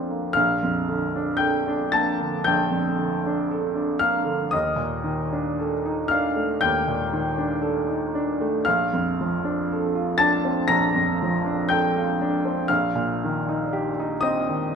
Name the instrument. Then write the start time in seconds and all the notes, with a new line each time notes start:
grand piano
Already playing: A#1 F2 D3 C4 D4 F4 D5 A#5 C6 F6
0.10 A#3
0.33 A#1 F5 F6
0.63 F2
0.89 D3
1.16 D4
1.37 A4 G5 G6
1.68 D4
1.92 A#3 A5 A6
2.20 D3
2.44 A#1 G5 G6
2.71 F2
2.99 D3
3.26 D4
3.51 A4
3.76 D4
3.99 A#3 F5 F6
4.25 D3
4.51 D#2 D#5 D#6
4.76 A#2
5.04 D#3
5.33 D4
5.59 A4
5.86 D#4
6.08 D4 F5 F6
6.36 A3
6.61 D#2 G5 G6
6.88 A#2
7.13 D#3
7.38 D4
7.62 A4
7.88 D#4
8.15 D4
8.41 A3
8.65 A#1 F5 F6
8.93 F2
9.21 F3
9.45 D4
9.72 A4
9.95 F4
10.18 D4 A5 A6
10.45 C4
10.68 A#1 A#5 A#6
10.95 F2
11.23 F3
11.45 D4
11.69 A4 G5 G6
11.96 F4
12.21 D4
12.45 C4
12.68 A#1 F5 F6
12.95 A#2
13.24 D#3
13.49 D#4
13.73 G4
14.00 D#4
14.21 C4 D#5 D#6
14.49 D#3